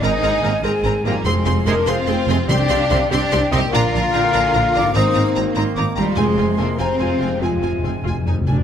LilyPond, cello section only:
\new Staff \with { instrumentName = "Cello section" } { \time 6/8 \key f \dorian \tempo 4. = 97 ees'4. aes4 g8 | aes4 bes8 c'4. | d'4. d'4 ees'8 | f'2. |
c'4. r4 g8 | aes4 bes8 c'4. | f4. r4. | }